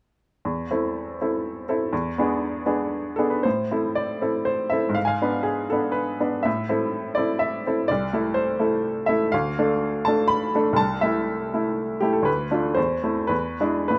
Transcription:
0.45 0.70 E2 soft
0.71 1.16 C4 soft
0.71 1.16 E4 soft
0.71 1.16 A4 soft
1.21 1.64 C4 soft
1.21 1.64 E4 soft
1.21 1.65 A4 soft
1.69 1.90 C4 soft
1.69 1.90 E4 soft
1.69 1.90 A4 soft
1.93 2.15 E2 soft
2.18 2.62 B3 soft
2.18 2.63 D4 soft
2.18 2.63 G#4 soft
2.66 3.14 B3 soft
2.66 3.15 D4 soft
2.66 3.15 G#4 soft
3.16 3.43 B3 soft
3.16 3.43 D4 soft
3.16 3.43 G#4 soft
3.16 3.31 A4 soft
3.30 3.44 B4 soft
3.43 3.71 A2 soft
3.43 3.97 C5 soft
3.71 4.19 C4 soft
3.71 4.19 E4 soft
3.71 4.19 A4 soft
3.95 4.46 D5 soft
4.21 4.67 C4 soft
4.21 4.67 E4 soft
4.21 4.67 A4 soft
4.45 4.71 C5 soft
4.70 4.93 C4 soft
4.70 4.94 E4 soft
4.70 4.94 A4 soft
4.70 4.95 E5 soft
4.89 5.16 G#2 soft
4.95 5.02 F5 medium
5.05 5.44 F5 medium
5.05 5.11 G#5 soft
5.22 5.66 B3 soft
5.22 5.66 D4 soft
5.22 5.66 B4 soft
5.43 5.68 G#4 soft
5.70 6.17 B3 soft
5.70 6.17 D4 soft
5.70 5.94 A4 soft
5.70 5.90 B4 soft
5.92 6.19 B4 soft
6.20 6.44 B3 soft
6.20 6.44 D4 soft
6.20 6.44 B4 soft
6.43 6.69 A2 soft
6.43 7.16 E5 medium
6.69 7.13 C4 soft
6.69 7.13 E4 soft
6.69 7.13 A4 soft
7.15 7.61 C4 soft
7.15 7.61 E4 soft
7.15 7.62 A4 soft
7.15 7.40 D5 soft
7.39 7.88 E5 medium
7.67 7.87 C4 soft
7.67 7.88 E4 soft
7.67 7.88 A4 soft
7.88 8.13 C2 soft
7.88 8.36 D5 medium
8.13 8.56 A3 soft
8.13 8.56 E4 soft
8.13 8.57 A4 soft
8.34 8.59 C5 medium
8.59 9.04 A3 soft
8.59 9.04 E4 soft
8.59 9.04 A4 soft
9.06 9.31 A3 soft
9.06 9.31 E4 soft
9.06 9.31 A4 soft
9.06 9.32 E5 medium
9.32 9.57 D2 soft
9.32 10.05 F5 medium
9.59 10.02 A3 soft
9.59 10.02 D4 soft
9.59 10.02 A4 soft
10.05 10.51 A3 soft
10.05 10.51 D4 soft
10.05 10.51 A4 soft
10.05 10.29 A5 medium
10.28 10.77 B5 medium
10.55 10.76 A3 soft
10.55 10.77 D4 soft
10.55 10.77 A4 soft
10.73 10.99 C2 soft
10.73 11.02 A5 medium
11.01 11.48 A3 soft
11.01 11.49 E4 soft
11.01 12.01 E5 medium
11.54 11.99 A3 soft
11.54 11.99 E4 soft
12.00 12.24 A3 soft
12.00 12.25 E4 soft
12.00 12.14 G4 soft
12.13 12.26 A4 soft
12.22 12.49 D2 soft
12.22 12.76 B4 medium
12.51 12.74 A3 soft
12.51 12.74 D4 soft
12.51 12.75 F4 soft
12.75 13.02 E2 soft
12.75 13.29 C5 soft
13.03 13.28 A3 soft
13.03 13.28 C4 soft
13.03 13.28 E4 soft
13.27 13.58 E2 soft
13.27 13.87 B4 medium
13.60 13.87 G#3 soft
13.60 13.87 D4 soft
13.60 13.87 E4 soft
13.88 13.99 A2 soft
13.88 13.99 B4 medium

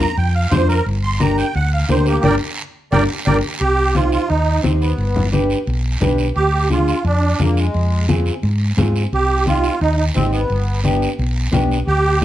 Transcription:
0.00 0.17 A#5 medium
0.00 low conga medium
0.00 short guiro medium
0.17 0.45 F2 loud
0.17 0.34 G5 medium
0.17 high conga soft
0.17 long guiro medium
0.35 0.51 F5 medium
0.51 0.79 F2 loud
0.51 0.76 D4 medium
0.51 0.76 F4 medium
0.51 0.68 C5 medium
0.51 0.76 C5 medium
0.51 high conga medium
0.51 low conga medium
0.51 short guiro medium
0.68 0.85 A#4 loud
0.68 short guiro medium
0.86 1.41 G1 loud
0.86 high conga soft
0.86 long guiro medium
1.03 1.20 C6 medium
1.19 1.44 D4 medium
1.19 1.45 G4 medium
1.19 1.45 A#4 medium
1.19 1.37 A#5 medium
1.19 high conga medium
1.19 short guiro medium
1.38 1.54 G5 medium
1.38 short guiro medium
1.55 1.83 D2 loud
1.55 1.72 F#5 medium
1.55 high conga soft
1.55 long guiro medium
1.73 1.89 F5 medium
1.89 2.17 D2 loud
1.89 2.13 D4 medium
1.89 2.13 G4 medium
1.89 2.14 A#4 medium
1.89 2.06 C5 medium
1.89 high conga medium
1.89 short guiro medium
2.06 2.23 A#3 medium
2.06 2.24 G4 medium
2.06 short guiro medium
2.23 2.36 G1 loud
2.23 2.34 D4 loud
2.23 2.34 G4 medium
2.23 2.34 A#4 medium
2.23 2.35 A#4 loud
2.23 2.35 D5 loud
2.23 2.35 G5 loud
2.23 high conga loud
2.23 long guiro loud
2.92 3.05 G1 loud
2.92 3.04 D4 loud
2.92 3.04 G4 loud
2.92 3.03 A#4 loud
2.92 3.04 A#4 loud
2.92 3.03 D5 loud
2.92 3.03 G5 loud
2.92 high conga loud
2.92 long guiro loud
3.26 3.39 G1 loud
3.26 3.38 D4 medium
3.26 3.38 G4 medium
3.26 3.37 A#4 medium
3.26 3.38 A#4 medium
3.26 3.37 D5 loud
3.26 3.37 G5 medium
3.26 high conga loud
3.26 long guiro loud
3.61 4.16 C2 medium
3.61 3.96 G4 loud
3.61 high conga soft
3.61 long guiro medium
3.94 4.20 D#4 medium
3.94 4.11 F4 medium
3.94 4.20 G4 medium
3.94 4.20 C5 medium
3.94 high conga medium
3.94 short guiro medium
4.12 4.29 F4 loud
4.12 short guiro medium
4.28 4.58 D#2 loud
4.28 4.61 D#4 loud
4.28 high conga soft
4.28 long guiro medium
4.63 4.92 D#2 medium
4.63 4.71 C4 medium
4.63 4.88 D#4 medium
4.63 4.88 G4 medium
4.63 4.88 C5 medium
4.63 high conga medium
4.63 short guiro medium
4.80 5.29 B3 medium
4.80 short guiro medium
4.98 5.53 G1 medium
4.98 high conga soft
4.98 long guiro medium
5.16 low conga medium
5.32 5.57 D4 medium
5.32 5.57 G4 medium
5.32 5.57 B4 medium
5.32 high conga medium
5.32 short guiro medium
5.50 short guiro medium
5.67 5.95 B1 loud
5.67 high conga soft
5.67 long guiro medium
6.01 6.29 B1 medium
6.01 6.25 D4 medium
6.01 6.26 G4 medium
6.01 6.26 B4 medium
6.01 high conga medium
6.01 low conga medium
6.01 short guiro medium
6.18 short guiro medium
6.36 6.91 D2 medium
6.36 6.68 G4 loud
6.36 high conga soft
6.36 long guiro medium
6.70 6.94 D4 medium
6.70 6.94 F4 medium
6.70 7.04 F4 medium
6.70 6.95 G#4 medium
6.70 high conga medium
6.70 short guiro medium
6.88 short guiro medium
7.05 7.32 F2 loud
7.05 7.41 D4 loud
7.05 high conga soft
7.05 long guiro medium
7.39 7.67 F2 medium
7.39 7.59 A#3 medium
7.39 7.64 D4 medium
7.39 7.64 F4 medium
7.39 7.64 G#4 medium
7.39 high conga medium
7.39 short guiro medium
7.57 8.06 G#3 medium
7.57 short guiro medium
7.74 8.30 F2 medium
7.74 high conga soft
7.74 long guiro medium
8.08 8.33 C4 medium
8.08 8.33 F4 medium
8.08 8.33 G#4 medium
8.08 high conga medium
8.08 short guiro medium
8.26 short guiro medium
8.43 8.71 G#2 loud
8.43 high conga soft
8.43 long guiro medium
8.77 9.05 G#2 medium
8.77 9.01 C4 medium
8.77 9.02 F4 medium
8.77 9.02 G#4 medium
8.77 high conga medium
8.77 low conga medium
8.77 short guiro medium
8.96 short guiro medium
9.13 9.67 C2 medium
9.13 9.45 G4 loud
9.13 high conga soft
9.13 long guiro medium
9.45 9.70 C4 medium
9.45 9.70 D#4 medium
9.45 9.79 F4 medium
9.45 9.71 G4 medium
9.45 high conga medium
9.45 short guiro medium
9.64 short guiro medium
9.81 10.09 D#2 loud
9.81 9.95 D#4 medium
9.81 high conga soft
9.81 long guiro medium
9.97 10.05 D#4 medium
10.15 10.43 G#1 medium
10.15 10.39 C4 medium
10.15 10.31 C4 medium
10.15 10.39 D#4 medium
10.15 10.39 G4 medium
10.15 high conga medium
10.15 short guiro medium
10.32 10.80 B3 medium
10.32 short guiro medium
10.50 11.05 G1 medium
10.50 high conga soft
10.50 long guiro medium
10.84 11.08 B3 medium
10.84 11.08 D4 medium
10.84 11.09 G4 medium
10.84 high conga medium
10.84 short guiro medium
11.02 short guiro medium
11.19 11.47 B1 loud
11.19 high conga soft
11.19 long guiro medium
11.52 11.81 B1 medium
11.52 11.76 B3 medium
11.52 11.77 D4 medium
11.52 11.77 G4 medium
11.52 high conga medium
11.52 low conga medium
11.52 short guiro medium
11.71 short guiro medium
11.87 12.25 D2 medium
11.87 12.23 G4 loud
11.87 high conga soft
11.87 long guiro medium
12.21 12.25 G#3 medium
12.21 12.25 D4 medium

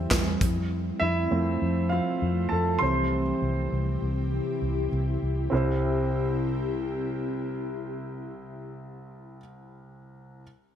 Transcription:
0.00 0.44 E3 soft
0.00 0.39 G3 medium
0.00 0.43 G3 soft
0.00 0.39 C4 medium
0.00 0.43 C4 medium
0.00 0.39 E4 medium
0.00 0.43 G4 medium
0.00 0.36 C5 medium
0.00 0.44 G5 medium
0.11 0.36 E2 medium
0.11 kick medium
0.11 snare medium
0.11 clap medium
0.11 closed hi-hat medium
0.41 0.90 F2 medium
0.41 2.79 F3 medium
0.41 2.79 A3 medium
0.41 5.48 C4 medium
0.41 kick medium
0.41 closed hi-hat medium
1.00 1.26 F2 medium
1.00 1.88 E4 medium
1.00 1.86 E5 medium
1.31 1.56 F2 medium
1.31 2.77 F3 soft
1.31 2.77 A3 soft
1.31 2.78 C4 medium
1.62 1.99 F2 medium
1.89 2.48 F4 medium
1.89 2.52 F5 medium
2.22 2.46 F2 medium
2.49 2.76 F2 medium
2.49 2.80 A4 medium
2.49 2.81 A5 medium
2.79 3.31 C2 medium
2.79 5.49 C3 medium
2.79 3.21 E3 soft
2.79 3.21 G3 soft
2.79 3.22 C4 soft
2.79 5.49 E4 medium
2.79 5.49 G4 medium
2.79 4.88 C5 medium
2.79 4.86 C6 medium
3.42 3.66 C2 medium
3.72 3.97 C2 medium
4.02 4.39 C2 medium
4.62 4.86 C2 medium
4.92 5.17 C2 medium
5.22 5.47 C2 medium
5.50 9.38 C2 medium
5.50 8.68 C3 medium
5.50 9.37 C4 medium
5.50 8.68 C4 medium
5.50 9.38 E4 medium
5.50 8.68 E4 medium
5.50 8.68 G4 medium
5.50 9.39 G4 medium
5.55 9.39 C5 medium

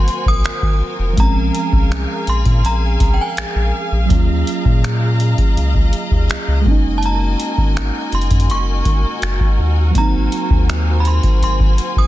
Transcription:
0.00 1.11 D#3 medium
0.00 1.13 F#3 medium
0.00 1.14 A#3 medium
0.00 1.16 C4 medium
0.00 1.15 F#4 medium
0.00 4.06 A#4 medium
0.00 1.15 C5 medium
0.00 1.15 G#5 medium
0.00 0.29 C6 medium
0.08 closed hi-hat medium
0.26 0.43 A#1 medium
0.26 0.78 D#6 medium
0.26 kick medium
0.44 0.52 G#1 soft
0.44 finger snap loud
0.44 closed hi-hat soft
0.63 0.79 G#1 medium
0.63 kick medium
0.99 1.16 F1 medium
1.13 4.04 F3 medium
1.13 4.05 G#3 medium
1.17 1.51 A#1 loud
1.17 4.07 C4 medium
1.17 6.62 G#4 medium
1.17 6.62 F5 medium
1.17 4.07 G#5 medium
1.17 2.32 A#5 medium
1.17 kick loud
1.17 closed hi-hat medium
1.22 4.09 C#4 medium
1.55 closed hi-hat medium
1.73 2.06 C2 medium
1.73 kick medium
1.92 finger snap loud
1.92 closed hi-hat medium
2.27 2.44 A#1 medium
2.27 2.66 C6 loud
2.27 closed hi-hat medium
2.45 2.62 A#2 medium
2.45 kick medium
2.45 closed hi-hat soft
2.64 2.97 A#1 loud
2.64 3.14 A#5 medium
2.64 closed hi-hat medium
3.00 3.17 C2 loud
3.00 kick medium
3.00 closed hi-hat medium
3.14 3.20 G5 medium
3.21 3.71 G#5 medium
3.37 3.45 A#1 soft
3.37 finger snap loud
3.37 closed hi-hat medium
3.56 3.72 A#1 medium
3.92 4.09 A#1 medium
4.06 6.60 F#3 medium
4.06 6.62 A#3 medium
4.10 4.43 D#2 loud
4.10 6.63 C#4 medium
4.10 9.92 D#5 medium
4.10 6.64 A#5 medium
4.10 kick loud
4.10 closed hi-hat medium
4.15 6.65 F4 medium
4.47 closed hi-hat medium
4.65 5.34 A#2 medium
4.65 kick medium
4.84 finger snap loud
4.84 closed hi-hat medium
5.20 closed hi-hat medium
5.38 kick medium
5.38 closed hi-hat soft
5.56 5.90 C#2 medium
5.56 closed hi-hat medium
5.75 kick medium
5.93 closed hi-hat medium
6.11 6.28 D#2 medium
6.11 kick medium
6.30 6.37 C#2 soft
6.30 finger snap loud
6.30 closed hi-hat medium
6.48 6.68 C#2 loud
6.61 9.53 G#3 medium
6.61 9.54 A#3 medium
6.66 7.35 F#1 medium
6.66 9.56 C#4 medium
6.66 12.07 F#4 medium
6.66 12.07 A#4 medium
6.66 9.92 G#5 medium
6.66 kick loud
6.71 9.57 D#4 medium
6.98 7.04 A5 medium
7.03 8.10 A#5 medium
7.03 closed hi-hat medium
7.40 closed hi-hat medium
7.58 7.91 G#1 medium
7.58 kick medium
7.77 finger snap loud
7.77 closed hi-hat medium
8.12 8.29 F#1 medium
8.12 8.51 C6 medium
8.12 closed hi-hat soft
8.21 closed hi-hat soft
8.31 8.47 F#2 loud
8.31 kick medium
8.31 closed hi-hat medium
8.40 closed hi-hat medium
8.49 8.82 F#1 medium
8.49 9.56 C#6 medium
8.49 closed hi-hat medium
8.85 9.02 G#1 loud
8.85 kick medium
8.85 closed hi-hat medium
9.22 9.39 F#1 medium
9.22 finger snap loud
9.22 closed hi-hat medium
9.40 kick medium
9.59 9.92 D#2 medium
9.90 12.07 F#3 medium
9.90 12.07 A#3 medium
9.95 10.29 G#1 loud
9.95 12.07 C4 medium
9.95 12.07 C5 medium
9.95 12.07 G#5 medium
9.95 11.03 A#5 medium
9.95 kick loud
9.95 closed hi-hat medium
10.00 12.07 D#4 medium
10.32 closed hi-hat medium
10.50 11.20 D#2 medium
10.50 kick medium
10.69 finger snap loud
10.69 closed hi-hat medium
11.00 11.06 B5 medium
11.05 11.43 C6 medium
11.05 closed hi-hat medium
11.23 kick medium
11.23 closed hi-hat soft
11.42 11.75 G#1 loud
11.42 11.99 C6 medium
11.42 closed hi-hat medium
11.60 kick medium
11.78 closed hi-hat medium
11.96 12.07 A#1 medium
11.96 12.07 D#6 medium
11.96 kick medium

